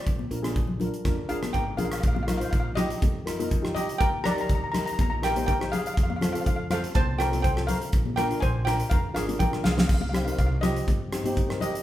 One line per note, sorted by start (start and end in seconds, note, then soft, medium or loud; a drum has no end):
0.00 1.51 D5 medium
0.06 0.25 A#1 medium
0.06 kick loud
0.06 closed hi-hat medium
0.19 high conga medium
0.31 0.87 A#1 medium
0.31 0.39 D4 medium
0.31 0.39 F4 medium
0.31 0.39 A#4 medium
0.31 closed hi-hat medium
0.43 0.65 D4 medium
0.43 0.66 F4 medium
0.43 0.65 G#4 medium
0.43 cross-stick medium
0.43 closed hi-hat medium
0.43 high conga medium
0.56 kick medium
0.56 closed hi-hat medium
0.67 low conga medium
0.80 0.96 D4 medium
0.80 0.96 F4 medium
0.80 0.96 A#4 medium
0.80 closed hi-hat medium
0.80 low conga medium
0.94 closed hi-hat medium
1.05 1.24 F2 medium
1.05 1.20 D4 medium
1.05 1.20 F4 medium
1.05 1.20 A#4 medium
1.05 kick loud
1.05 cross-stick medium
1.05 closed hi-hat medium
1.05 high conga medium
1.29 1.52 G1 medium
1.29 1.59 D4 medium
1.29 1.59 F4 medium
1.29 1.53 G#4 medium
1.29 1.59 A#4 medium
1.29 1.55 F5 medium
1.29 closed hi-hat medium
1.43 cross-stick medium
1.43 closed hi-hat medium
1.43 high conga medium
1.53 1.77 G#1 medium
1.53 1.77 A#4 medium
1.53 1.79 G5 medium
1.53 kick medium
1.53 closed hi-hat medium
1.77 2.01 A#1 medium
1.77 2.03 D4 medium
1.77 2.03 F4 medium
1.77 1.86 G#4 medium
1.77 2.03 A#4 medium
1.77 1.84 F5 medium
1.77 closed hi-hat medium
1.77 high conga medium
1.77 low conga medium
1.85 1.92 F5 medium
1.92 1.99 F5 medium
1.92 cross-stick medium
1.92 closed hi-hat medium
2.00 2.41 A#1 loud
2.00 2.06 F5 medium
2.00 kick loud
2.00 closed hi-hat medium
2.08 2.13 F5 medium
2.15 2.21 F5 medium
2.15 high conga medium
2.23 2.28 F5 medium
2.27 2.35 D#4 medium
2.27 2.35 F4 medium
2.27 2.36 A#4 medium
2.27 2.36 F5 medium
2.27 cross-stick medium
2.27 closed hi-hat medium
2.27 low conga medium
2.37 2.62 D#4 medium
2.37 2.62 F4 medium
2.37 2.62 C5 medium
2.37 2.43 F5 medium
2.37 closed hi-hat medium
2.45 2.50 F5 medium
2.51 2.90 A#1 loud
2.51 2.59 F5 medium
2.51 kick loud
2.51 closed hi-hat medium
2.60 2.69 F5 medium
2.75 3.07 D#4 medium
2.75 3.07 F4 medium
2.75 3.07 G4 medium
2.75 3.71 G4 medium
2.75 3.71 D#5 loud
2.75 cross-stick medium
2.75 closed hi-hat medium
2.75 low conga medium
2.90 closed hi-hat medium
3.02 3.77 F2 medium
3.02 kick loud
3.02 closed hi-hat medium
3.02 high conga medium
3.26 3.34 D#4 medium
3.26 3.34 F4 medium
3.26 3.34 A#4 medium
3.26 cross-stick medium
3.26 closed hi-hat medium
3.39 3.53 D#4 medium
3.39 3.53 F4 medium
3.39 3.54 A#4 medium
3.39 closed hi-hat medium
3.39 high conga medium
3.51 kick medium
3.51 closed hi-hat medium
3.62 3.99 D#4 medium
3.62 3.99 F4 medium
3.62 3.99 G4 medium
3.62 cross-stick medium
3.75 3.99 G4 medium
3.75 4.00 D#5 medium
3.75 closed hi-hat medium
3.75 low conga medium
3.89 closed hi-hat medium
3.98 4.38 D#2 loud
3.98 4.23 A#4 medium
3.98 4.22 G5 loud
3.98 kick loud
3.98 closed hi-hat medium
4.24 4.32 D#4 medium
4.24 4.32 G4 medium
4.24 4.32 A#4 medium
4.24 4.33 D5 medium
4.24 4.30 A#5 loud
4.24 cross-stick medium
4.24 closed hi-hat medium
4.24 low conga medium
4.31 4.40 A#5 medium
4.36 4.59 D#4 medium
4.36 4.59 G4 medium
4.36 4.59 A#4 medium
4.36 closed hi-hat medium
4.41 4.46 A#5 medium
4.47 4.87 D#2 loud
4.47 4.54 A#5 medium
4.47 kick loud
4.47 closed hi-hat medium
4.55 4.63 A#5 medium
4.64 4.71 A#5 medium
4.72 5.03 D#4 medium
4.72 5.03 G4 medium
4.72 5.03 A#4 medium
4.72 4.77 A#5 medium
4.72 cross-stick medium
4.72 closed hi-hat medium
4.72 low conga medium
4.79 4.85 A#5 medium
4.86 4.92 A#5 medium
4.86 closed hi-hat medium
4.93 5.00 A#5 medium
4.99 5.74 A#1 medium
4.99 5.08 A#5 medium
4.99 kick loud
4.99 closed hi-hat medium
4.99 high conga medium
5.10 5.16 A#5 medium
5.22 5.30 D#4 medium
5.22 5.30 G4 medium
5.22 5.30 A#4 medium
5.22 5.47 A#4 medium
5.22 5.45 G5 loud
5.22 cross-stick medium
5.22 closed hi-hat medium
5.36 5.50 D#4 medium
5.36 5.50 G4 medium
5.36 5.50 C5 medium
5.36 closed hi-hat medium
5.36 high conga medium
5.46 5.59 A#4 medium
5.46 5.58 G5 loud
5.46 kick medium
5.46 closed hi-hat medium
5.60 5.97 D#4 medium
5.60 5.97 G4 medium
5.60 5.97 C5 medium
5.60 cross-stick medium
5.72 5.80 G#4 medium
5.72 5.77 F5 loud
5.72 closed hi-hat medium
5.72 low conga medium
5.79 5.86 F5 medium
5.86 5.93 F5 medium
5.86 closed hi-hat medium
5.94 6.34 F2 loud
5.94 6.02 F5 medium
5.94 kick loud
5.94 closed hi-hat medium
6.03 6.09 F5 medium
6.10 6.15 F5 medium
6.10 high conga medium
6.16 6.23 F5 medium
6.21 6.29 C4 medium
6.21 6.29 F4 medium
6.21 6.29 A4 medium
6.21 6.31 F5 medium
6.21 cross-stick medium
6.21 closed hi-hat medium
6.21 low conga medium
6.33 6.56 C4 medium
6.33 6.56 F4 medium
6.33 6.56 A4 medium
6.33 6.40 F5 medium
6.33 closed hi-hat medium
6.41 6.46 F5 medium
6.46 6.83 F2 loud
6.46 6.55 F5 medium
6.46 kick medium
6.46 closed hi-hat medium
6.56 6.63 F5 medium
6.70 7.00 C4 medium
6.70 7.00 F4 medium
6.70 6.95 A4 medium
6.70 7.00 C5 medium
6.70 6.96 F5 loud
6.70 cross-stick medium
6.70 closed hi-hat medium
6.70 low conga medium
6.84 closed hi-hat medium
6.95 7.70 C2 loud
6.95 7.18 C5 medium
6.95 7.20 A5 loud
6.95 kick loud
6.95 closed hi-hat medium
6.95 high conga medium
7.18 7.27 C4 medium
7.18 7.26 F4 medium
7.18 7.27 A4 medium
7.18 7.43 A#4 medium
7.18 7.41 G5 loud
7.18 cross-stick medium
7.18 closed hi-hat medium
7.32 7.46 C4 medium
7.32 7.47 F4 medium
7.32 7.46 A4 medium
7.32 closed hi-hat medium
7.32 high conga medium
7.42 7.67 C5 medium
7.42 7.68 G5 medium
7.42 kick medium
7.42 closed hi-hat medium
7.56 7.93 C4 medium
7.56 7.93 F4 medium
7.56 7.93 A4 medium
7.56 cross-stick medium
7.67 8.14 A#4 medium
7.67 8.18 F5 loud
7.67 closed hi-hat medium
7.67 low conga medium
7.82 closed hi-hat medium
7.92 8.30 A#1 medium
7.92 kick loud
7.92 closed hi-hat medium
8.06 high conga medium
8.16 8.25 D4 medium
8.16 8.25 F4 medium
8.16 8.25 A#4 medium
8.16 8.40 A#4 medium
8.16 8.42 G5 loud
8.16 cross-stick medium
8.16 closed hi-hat medium
8.16 high conga medium
8.29 8.52 D4 medium
8.29 8.52 F4 medium
8.29 8.52 A#4 medium
8.29 closed hi-hat medium
8.40 8.80 A#1 loud
8.40 8.65 C5 medium
8.40 8.67 G#5 loud
8.40 kick medium
8.40 closed hi-hat medium
8.65 8.96 D4 medium
8.65 8.96 F4 medium
8.65 8.96 A#4 medium
8.65 8.90 A#4 medium
8.65 8.91 G5 medium
8.65 cross-stick medium
8.65 closed hi-hat medium
8.65 low conga medium
8.80 closed hi-hat medium
8.90 9.10 F2 medium
8.90 9.14 A#4 medium
8.90 9.13 F5 medium
8.90 kick loud
8.90 closed hi-hat medium
9.14 9.37 G#1 medium
9.14 9.23 D4 medium
9.14 9.23 F4 medium
9.14 9.39 G#4 medium
9.14 9.23 A#4 medium
9.14 9.38 F5 medium
9.14 cross-stick medium
9.14 closed hi-hat medium
9.27 9.42 D4 medium
9.27 9.42 F4 medium
9.27 9.42 A#4 medium
9.27 closed hi-hat medium
9.27 high conga medium
9.39 9.63 A#1 medium
9.39 9.64 A#4 medium
9.39 9.65 G5 medium
9.39 kick loud
9.39 closed hi-hat medium
9.39 low conga medium
9.51 9.88 D4 medium
9.51 9.88 F4 medium
9.51 9.89 A#4 medium
9.51 cross-stick medium
9.64 9.87 C2 medium
9.64 9.73 G#4 medium
9.64 9.71 F5 medium
9.64 snare medium
9.64 low conga medium
9.72 9.79 F5 medium
9.77 9.86 F5 medium
9.77 snare loud
9.77 high conga medium
9.88 10.27 C2 medium
9.88 9.93 F5 medium
9.88 kick loud
9.88 closed hi-hat medium
9.88 splash medium
9.94 10.00 F5 medium
10.01 10.08 F5 medium
10.01 high conga medium
10.09 10.21 G4 medium
10.09 10.16 F5 medium
10.09 low conga medium
10.13 10.22 C4 medium
10.13 10.21 D#4 medium
10.13 10.24 F5 medium
10.13 cross-stick medium
10.13 closed hi-hat medium
10.25 10.49 C4 medium
10.25 10.49 D#4 medium
10.25 10.49 A#4 medium
10.25 10.31 F5 medium
10.25 closed hi-hat medium
10.32 10.37 F5 medium
10.39 10.76 C2 loud
10.39 10.45 F5 medium
10.39 kick medium
10.39 closed hi-hat medium
10.46 10.55 F5 medium
10.61 10.93 C4 medium
10.61 10.93 D#4 medium
10.61 10.93 F4 medium
10.61 11.57 G4 medium
10.61 11.56 D#5 medium
10.61 cross-stick medium
10.61 closed hi-hat medium
10.61 low conga medium
10.76 closed hi-hat medium
10.88 11.63 G2 medium
10.88 kick loud
10.88 closed hi-hat medium
10.88 high conga medium
11.12 11.20 C4 medium
11.12 11.20 D#4 medium
11.12 11.20 G4 medium
11.12 cross-stick medium
11.12 closed hi-hat medium
11.24 11.39 C4 medium
11.24 11.39 D#4 medium
11.24 11.40 G4 medium
11.24 closed hi-hat medium
11.24 high conga medium
11.37 kick medium
11.37 closed hi-hat medium
11.49 11.83 C4 medium
11.49 11.83 D#4 medium
11.49 11.83 A#4 medium
11.49 cross-stick medium
11.61 11.83 G4 medium
11.61 11.83 D#5 medium
11.61 closed hi-hat loud
11.61 low conga medium
11.75 closed hi-hat medium